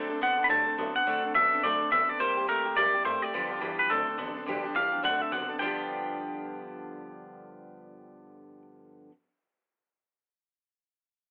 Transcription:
Already playing: D3 F#3 A3
0.10 A2 C4 D4 A4
0.20 F#2 D3 F#3 B3 C4 D4 A4 F#5
0.38 D2 C4 D4 A4
0.44 B5
0.49 G2 D3 F#3 A3 C4 D4 A4 A5
0.66 C4 D4 A4
0.78 A2 D3 F#3 B3 C4 D4 A4
0.95 C4 D4 A4 F#5, muted upright bass stroke
1.06 A2 D3 F#3 A3 C4 D4 A4
1.24 F#2 C4 D4 A4
1.34 D2 D3 F#3 B3 C4 D4 A4 E5
1.52 C4 D4 A4, muted upright bass stroke
1.63 A2 D3 F#3 A3 C4 D4 A4 D5
1.80 C4 D4 A4, muted upright bass stroke
1.91 D2 D3 F#3 B3 C4 D4 A4 E5
2.09 C4 D4 A4 D5, muted upright bass stroke
2.19 C2 C3 G3 A#3 E4 G4 C5
2.37 G2 A#3 E4 G4
2.47 E2 C3 G3 A3 A#3 E4 G4 A#4
2.65 C2 A#3 E4 G4
2.76 F2 C3 G3 A#3 E4 G4 D5
2.94 A#3 E4 G4, muted upright bass stroke
3.04 G2 C3 G3 A3 A#3 E4 G4 C5
3.22 A#3 E4 G4 D5, muted upright bass stroke
3.33 G1 G2 D3 F3 B3 F4 G4
3.50 B1 F3 B3 F4 G4
3.60 E2 G2 E3 F3 B3 F4 G4
3.78 F3 B3 F4 G4 B4, muted upright bass stroke
3.89 D2 D3 F#3 A3 C4 D4 A4
4.08 C4 D4 A4
4.18 A1 D3 F#3 B3 C4 D4 A4
4.35 C4 D4 A4, muted upright bass stroke
4.46 G1 G2 D3 F3 B3 D4 G4
4.64 F3 B3 D4 G4, muted upright bass stroke
4.74 C2 G2 E3 F3 B3 D4 G4 F5
4.92 F3 B3 D4 G4, muted upright bass stroke
5.02 D2 D3 F#3 A3 C4 D4 A4 F#5
5.21 C4 D4 A4 E5, muted upright bass stroke
5.31 F#1 D3 F#3 B3 C4 D4 A4 F#5
5.49 C4 D4 A4
5.58 G1 G2 D3 F3 B3 G5
5.63 B3 D4 F4 G4

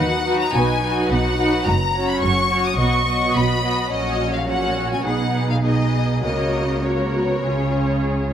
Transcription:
Already playing: D#2 D#3 F#3 D#4 F#4 B4 F#5
0.26 F#3 D#4 F#4 B4
0.40 A#5
0.54 B1 B2 F#3 D#4 F#4 B4 G#5
0.82 F#3 D#4 F#4 B4
1.10 B1 B2 F#5
1.38 F#3 D#4 F#4 B4
1.66 F#1 F#2 A#5
1.94 F#3 C#4 F#4 C#5
2.08 B5
2.22 F#1 F#2 C#6
2.50 F#3 C#4 F#4 C#5
2.65 D#6
2.77 B1 B2 F#3 B3 F#4 D#5 C#6
3.07 F#3 B3 F#4 D#5
3.35 B1 B2 B5
3.64 F#3 B3 F#4 D#5
3.91 A#1 A#2 F#3 C#4 F#4 C#5 D#5
4.35 F5
4.48 F#3 C#4 F#4 C#5 F#5
4.92 G#5
5.05 B1 B2 B3 D#4 G#4 F#5
5.51 F5
5.64 B3 D#4 G#4 D#5
6.23 C#2 C#3 A#3 F#4 A#4 C#5 D#5
6.83 A#3 F#4 A#4 C#5
7.15 B3
7.43 C#2 C#3 C#4 F4 G#4 C#5

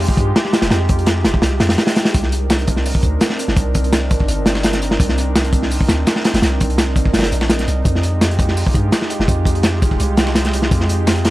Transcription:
Already playing: G#3 D#4 F4 G4
0.00 open hi-hat
0.09 kick
0.17 G2, kick, closed hi-hat
0.36 snare, closed hi-hat
0.45 snare
0.53 snare, closed hi-hat
0.62 F1, snare, closed hi-hat
0.71 F2, snare, closed hi-hat
0.89 kick, closed hi-hat
0.99 closed hi-hat
1.06 snare, closed hi-hat
1.25 F1, snare, closed hi-hat
1.34 kick
1.42 C2, snare, closed hi-hat
1.60 F2, snare, closed hi-hat
1.69 snare, closed hi-hat
1.78 snare, closed hi-hat
1.87 snare, closed hi-hat
1.96 snare, closed hi-hat
2.05 snare, closed hi-hat
2.14 C2 C4 D4 D#4 A#4, kick, closed hi-hat, tambourine
2.23 snare
2.32 closed hi-hat, tambourine
2.50 snare, closed hi-hat, tambourine
2.59 closed hi-hat
2.67 kick, closed hi-hat, tambourine
2.76 snare
2.86 open hi-hat, tambourine
2.95 kick
3.03 D2, kick, closed hi-hat, tambourine
3.21 snare, closed hi-hat, tambourine
3.30 snare
3.39 closed hi-hat, tambourine
3.48 G1, snare
3.56 C2, kick, closed hi-hat, tambourine
3.75 kick, closed hi-hat, tambourine
3.84 closed hi-hat
3.93 snare, closed hi-hat, tambourine
4.11 G1, kick, closed hi-hat, tambourine
4.20 kick, snare
4.28 G1, closed hi-hat, tambourine
4.46 snare, closed hi-hat, tambourine
4.55 snare
4.63 snare, closed hi-hat, tambourine
4.73 snare, closed hi-hat
4.82 closed hi-hat, tambourine
4.91 snare
5.00 C2, kick, closed hi-hat, tambourine
5.09 snare
5.18 closed hi-hat, tambourine
5.36 snare, closed hi-hat, tambourine
5.45 closed hi-hat
5.53 kick, closed hi-hat, tambourine
5.63 snare
5.71 open hi-hat, tambourine
5.81 kick
5.88 D2, snare, closed hi-hat, tambourine
6.07 snare, closed hi-hat, tambourine
6.16 snare
6.24 snare, closed hi-hat, tambourine
6.34 G1, snare, closed hi-hat
6.42 C2, snare, closed hi-hat, tambourine
6.60 kick, closed hi-hat, tambourine
6.70 closed hi-hat
6.78 snare, closed hi-hat, tambourine
6.96 G1, kick, closed hi-hat, tambourine
7.05 kick, snare
7.14 G1, snare, closed hi-hat, tambourine
7.19 snare, closed hi-hat
7.23 snare, closed hi-hat
7.32 A#1, closed hi-hat, tambourine
7.41 snare
7.50 snare, closed hi-hat, tambourine
7.59 snare, closed hi-hat
7.68 C2, closed hi-hat, tambourine
7.85 F2 G#3 F4 G4, kick, closed hi-hat, tambourine
7.95 snare
8.03 closed hi-hat, tambourine
8.21 snare, closed hi-hat, tambourine
8.31 closed hi-hat
8.39 kick, closed hi-hat, tambourine
8.48 snare
8.57 open hi-hat, tambourine
8.67 kick
8.74 G2, kick, closed hi-hat, tambourine
8.92 snare, closed hi-hat, tambourine
9.02 snare
9.10 closed hi-hat, tambourine
9.20 F1, snare
9.28 F2, kick, closed hi-hat, tambourine
9.45 kick, closed hi-hat, tambourine
9.55 closed hi-hat
9.63 snare, closed hi-hat, tambourine
9.82 F1, kick, closed hi-hat, tambourine
9.91 kick, snare
10.00 C2, closed hi-hat, tambourine
10.17 snare, closed hi-hat, tambourine
10.26 snare
10.35 snare, closed hi-hat, tambourine
10.45 snare, closed hi-hat
10.53 closed hi-hat, tambourine
10.62 snare
10.71 F2, kick, closed hi-hat, tambourine
10.80 snare
10.89 closed hi-hat, tambourine
11.07 snare, closed hi-hat, tambourine
11.16 closed hi-hat
11.25 snare, closed hi-hat, tambourine

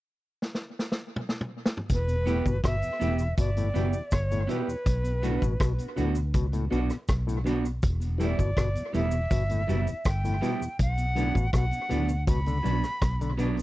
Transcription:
0.42 snare
0.55 snare
0.79 snare
0.92 snare
1.16 mid tom
1.29 snare
1.41 mid tom
1.66 snare
1.77 floor tom
1.90 E1 B4, kick, closed hi-hat, cabasa
2.08 E2 B2, closed hi-hat, cabasa
2.26 A2 E3 G3 B3 E4 G4, closed hi-hat, cabasa
2.45 G1 E2 B2, kick, cabasa
2.64 G1 B2 E5, kick, cross-stick, closed hi-hat, cabasa
2.82 E2 B2, closed hi-hat, cabasa
3.00 E1 A2 E3 G3 B3 E4 G4, closed hi-hat, cabasa
3.19 E2 B2, closed hi-hat, cabasa
3.38 G1 B2 D5, kick, closed hi-hat, cabasa
3.56 E2 A2 B2, closed hi-hat, cabasa
3.74 F#1 B2 E3 G3 B3 E4 G4, closed hi-hat, cabasa
3.93 E2 B2, cabasa
4.11 G1 C#5, kick, cross-stick, closed hi-hat, cabasa
4.31 E2 A2 B2, closed hi-hat, cabasa
4.47 B2 E3 G3 B3 E4 G4 B4, closed hi-hat, cabasa
4.67 E2 B2, cabasa
4.86 B1, kick, closed hi-hat, cabasa
5.04 B2, closed hi-hat, cabasa
5.22 A2 D3 F#3 B3 D4 F#4, closed hi-hat, cabasa
5.42 A1 B2, kick, cabasa
5.60 B1 B2, kick, cross-stick, closed hi-hat, cabasa
5.78 B2, closed hi-hat, cabasa
5.96 D2 A2 D3 F#3 B3 D4 F#4, closed hi-hat, cabasa
6.15 B2, cabasa
6.34 C#2 B2, kick, closed hi-hat, cabasa
6.52 A2 B2, closed hi-hat, cabasa
6.70 B1 B2 D3 F#3 B3 D4 F#4, closed hi-hat, cabasa
6.89 B2, cross-stick, cabasa
7.08 B1, kick, cross-stick, closed hi-hat, cabasa
7.26 A2 B2, closed hi-hat, cabasa
7.44 B2 D3 F#3 B3 D4 F#4, closed hi-hat, cabasa
7.63 B2, closed hi-hat, cabasa
7.83 E1, kick, closed hi-hat, cabasa
8.00 E2 B2, closed hi-hat, cabasa
8.18 A2 E3 G3 B3 E4, closed hi-hat, cabasa
8.24 D5
8.37 G1 E2 B2, kick, cabasa
8.57 G1 B2, kick, cross-stick, closed hi-hat, cabasa
8.74 E2 B2, closed hi-hat, cabasa
8.92 E1 A2 E3 G3 B3 E4 E5, closed hi-hat, cabasa
9.11 E2 B2, cabasa
9.31 G1 B2, kick, closed hi-hat, cabasa
9.49 E2 A2 B2, closed hi-hat, cabasa
9.67 F#1 B2 E3 G3 B3 E4, closed hi-hat, cabasa
9.86 E2 B2, closed hi-hat, cabasa
10.05 G1 G5, kick, cross-stick, closed hi-hat, cabasa
10.23 E2 A2 B2, closed hi-hat, cabasa
10.41 B2 E3 G3 B3 E4, closed hi-hat, cabasa
10.60 E2 B2, cabasa
10.79 B1 F#5, kick, closed hi-hat, cabasa
10.98 B2, closed hi-hat, cabasa
11.15 A2 D3 F#3 B3 D4, closed hi-hat, cabasa
11.34 A1 B2, kick, cabasa
11.53 B1 B2 F#5, kick, cross-stick, closed hi-hat, cabasa
11.71 B2, closed hi-hat, cabasa
11.89 D2 A2 D3 F#3 B3 D4, closed hi-hat, cabasa
12.08 B2, cabasa
12.27 C#2 B2 B5, kick, closed hi-hat, cabasa
12.45 B2 D3, closed hi-hat, cabasa
12.63 B1 B2 D3 F#3 B3 D4, closed hi-hat, cabasa
12.82 B2, cross-stick, cabasa
13.02 B1, kick, cross-stick, closed hi-hat, cabasa
13.19 B2 D3, closed hi-hat, cabasa
13.37 B2 D3 F#3 B3 D4, closed hi-hat, cabasa
13.57 B2, closed hi-hat, cabasa

